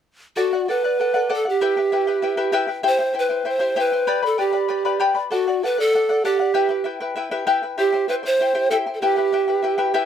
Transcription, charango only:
0.36 A4 D5 F#5
0.53 D5 F#5
0.68 A4 D5 F#5
0.84 D5 F#5
0.99 A4 D5 F#5
1.14 A4 D5 F#5
1.30 A4 D5 F#5
1.45 D5 F#5
1.61 E4 G4 B4 E5 G5
1.77 E4 B4 G5
1.92 E4 B4 E5 G5
2.07 E4 B4 G5
2.22 E4 B4 E5 G5
2.37 E4 G4 B4 E5 G5
2.52 E4 G4 B4 E5 G5
2.67 E4 B4 G5
2.83 E4 G4 C5 E5 G5
2.99 E4 C5 G5
3.13 E4 C5 E5 G5
3.29 E4 C5 G5
3.45 E4 C5 E5 G5
3.59 E4 G4 C5 E5 G5
3.76 E4 G4 C5 E5 G5
3.92 E4 C5 G5
4.07 G4 B4 D5 G5 B5
4.23 B4 D5 B5
4.38 B4 D5 G5 B5
4.53 B4 D5 B5
4.68 B4 D5 G5 B5
4.85 G4 B4 D5 G5 B5
5.00 G4 B4 D5 G5 B5
5.15 B4 D5 B5
5.31 A4 D5 F#5
5.48 D5 F#5
5.63 A4 D5 F#5
5.78 D5 F#5
5.94 A4 D5 F#5
6.09 A4 D5 F#5
6.25 A4 D5 F#5
6.39 D5 F#5
6.54 E4 G4 B4 E5 G5
6.69 E4 B4 G5
6.84 E4 B4 E5 G5
7.00 E4 B4 G5
7.16 E4 B4 E5 G5
7.31 E4 G4 B4 E5 G5
7.47 E4 G4 B4 E5 G5
7.63 E4 B4 G5
7.78 E4 G4 C5 E5 G5
7.92 E4 C5 G5
8.08 E4 C5 E5 G5
8.23 E4 C5 G5
8.40 E4 C5 E5 G5
8.55 E4 G4 C5 E5 G5
8.70 E4 G4 C5 E5 G5
8.86 E4 C5 G5
9.02 E4 G4 B4 E5 G5
9.17 E4 B4 G5
9.33 E4 B4 E5 G5
9.48 E4 B4 G5
9.62 E4 B4 E5 G5
9.78 E4 G4 B4 E5 G5
9.94 E4 G4 B4 E5 G5

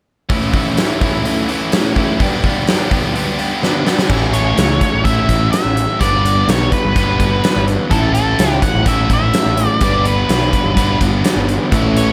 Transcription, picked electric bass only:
4.10 A1
4.58 C#2
4.94 A1
5.29 A1
5.65 A1
6.01 G1
6.48 B1
6.85 G1
7.20 G1
7.56 G1
7.91 A1
8.39 C#2
8.75 A1
9.10 A1
9.46 A1
9.82 G1
10.29 B1
10.64 G1
11.01 G1
11.36 G1
11.72 A1

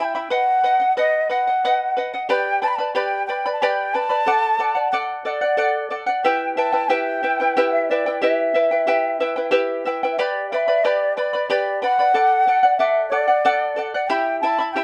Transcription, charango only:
Already playing: G5
0.00 E4 E5 B5
0.15 E4 E5 B5
0.30 B4 D#5 F#5
0.64 B4 D#5 F#5
0.80 D#5 F#5
0.97 B4 D#5 F#5
1.29 B4 D#5 F#5
1.47 D#5 F#5
1.65 B4 D#5 F#5
1.97 B4 D#5 F#5
2.14 D#5 F#5
2.29 G4 B4 D5 G5 B5
2.62 B4 D5 G5 B5
2.78 B4 D5 B5
2.95 G4 B4 D5 G5 B5
3.29 B4 D5 G5 B5
3.46 B4 D5 B5
3.62 G4 B4 D5 G5 B5
3.94 B4 D5 G5 B5
4.10 B4 D5 B5
4.26 A4 D5 F#5
4.59 A4 D5 F#5
4.75 D5 F#5
4.93 A4 D5 F#5
5.25 A4 D5 F#5
5.41 D5 F#5
5.57 A4 D5 F#5
5.90 A4 D5 F#5
6.07 D5 F#5
6.24 E4 G4 B4 E5 G5
6.57 E4 B4 E5 G5
6.72 E4 B4 G5
6.89 E4 G4 B4 E5 G5
7.23 E4 B4 E5 G5
7.40 E4 B4 G5
7.57 E4 G4 B4 E5 G5
7.91 E4 B4 E5 G5
8.06 E4 B4 G5
8.22 E4 G4 B4 E5 G5
8.54 E4 B4 E5 G5
8.71 E4 B4 G5
8.87 E4 G4 B4 E5 G5
9.20 E4 B4 E5 G5
9.36 E4 B4 G5
9.51 E4 G4 B4 E5 G5
9.85 E4 B4 E5 G5
10.03 E4 B4 G5
10.19 G4 B4 D5 G5 B5
10.52 B4 D5 G5 B5
10.68 B4 D5 B5
10.84 G4 B4 D5 G5 B5
11.17 B4 D5 G5 B5
11.33 B4 D5 B5
11.50 G4 B4 D5 G5 B5
11.82 B4 D5 G5 B5
11.99 B4 D5 B5
12.14 A4 D5 F#5
12.47 A4 D5 F#5
12.63 D5 F#5
12.79 A4 D5 F#5
13.12 A4 D5 F#5
13.28 D5 F#5
13.45 A4 D5 F#5
13.76 A4 D5 F#5
13.94 D5 F#5
14.09 E4 G4 E5 G5 B5
14.43 E4 E5 G5 B5
14.59 E4 E5 B5
14.76 E4 G4 E5 G5 B5

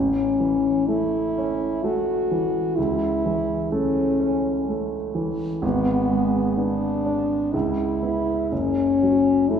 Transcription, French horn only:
Already playing: C#4
0.88 E4
1.83 F#4
2.76 E4
3.72 C#4
5.64 B3
6.57 D4
7.53 E4
8.52 C#4
9.49 E4

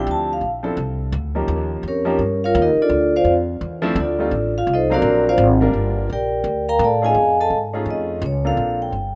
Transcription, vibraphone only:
0.11 A5
0.33 F5
1.88 C#4 G4 A#4 C#5
2.44 F4 A#4 C#5 F5
2.62 D#4 G4 A#4 D#5
2.82 D4 F4 A4 D5
3.16 F4 C5 D5 F5
4.00 D4 F4 A4 D5
4.58 F4 F5
4.74 D#4 A4 C5 D#5
4.94 D4 F#4 A#4 D5
5.29 F4 C5 D5 F5
6.13 G4 A#4 D5 G5
6.69 A#4 F5 G5 A#5
6.84 A4 D5 F5 A5
7.05 G#4 D#5 F5 G#5
7.41 A4 D#5 F5 A5
7.91 D#5
8.26 C#5
8.47 F5
8.82 G5

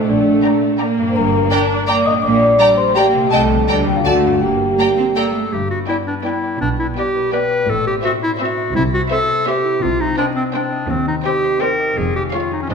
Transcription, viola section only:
Already playing: A3
0.81 A#3
1.51 D4
1.87 A#3
2.24 A#3
2.60 G3
2.96 A#3
3.32 A3
3.68 G3
4.05 A3
4.42 A#3
5.89 B3
6.25 B3
6.98 B3
7.33 B3
8.05 C4
8.40 C4
9.12 C4
9.47 C4
10.19 C4
10.54 C4
11.26 C4
11.62 C4
12.34 G#3
12.70 A3

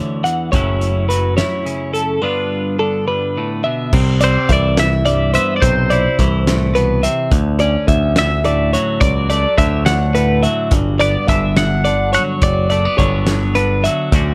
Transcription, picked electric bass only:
0.53 F#1
3.93 C2
4.49 C2
5.62 B1
6.19 C2
7.32 D2
7.88 D2
9.01 C#2
9.58 D2
10.72 G1
11.28 G1
12.42 F#1
12.99 G1
14.12 D2

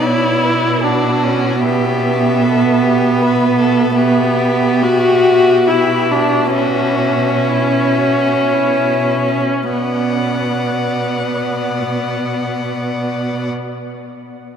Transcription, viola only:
0.02 E4
0.84 D4
1.24 C#4
1.63 B3
3.96 B3
4.83 F#4
5.68 E4
6.11 D4
6.54 C#4
9.73 B3

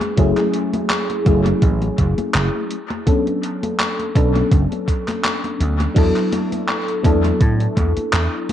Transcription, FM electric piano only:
Already playing: G#3 B3 C#4 E4 G#4
0.16 F#3 A3 C#4 E4 G#4
1.25 F#3 A3 C#4 E4 G#4
3.06 F#3 B3 C#4 D4 A4
4.15 F#3 B3 C#4 D4 A4
5.94 F#3 B3 D4 E4 A4
7.03 F#3 B3 D4 E4 A4

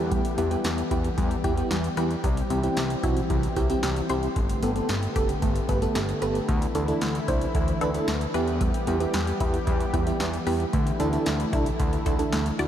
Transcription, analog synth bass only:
Already playing: E2
0.38 E2
0.64 E2
0.91 E2
1.18 E2
1.44 E2
1.71 E2
1.97 E2
2.24 C2
2.50 C2
2.77 C2
3.03 B1
3.30 C2
3.57 C2
3.83 C2
4.10 C2
4.36 G1
4.63 G1
4.89 G1
5.16 F#1
5.42 G1
5.69 G1
5.96 G1
6.22 G1
6.49 D2
6.75 D2
7.02 D2
7.28 C2
7.55 D2
7.81 D2
8.08 D2
8.34 E2
8.88 E2
9.14 E2
9.40 E2
9.67 E2
9.94 E2
10.21 E2
10.47 E2
10.73 D2
11.00 D2
11.26 D2
11.53 C2
11.80 D2
12.06 D2
12.33 D2
12.59 D2

